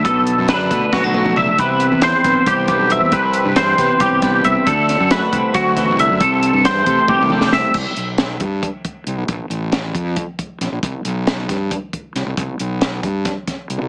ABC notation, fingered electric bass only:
X:1
M:7/8
L:1/16
Q:1/4=136
K:Clyd
V:1 name="Fingered electric bass" clef=bass
B,,,3 F,,3 B,, z B,,, B,,,3 B,,, z | C,,3 E,,2 z B,,, z C,,3 B,,,2 E,, | C,,3 G,,3 C, z C,, C,,3 C,, z | D,,3 F,,2 z C,, z D,,3 C,,2 F,, |
C,,3 G,,3 C, z C,, C,,3 C,, z | C,, z B,,,4 G,,2 z4 C,, B,,, | _B,,, z A,,,4 =F,,2 z4 B,,, B,,, | C,, z B,,,4 G,,2 z4 C,, C,, |
C,, z B,,,4 G,,2 z4 C,, C,, |]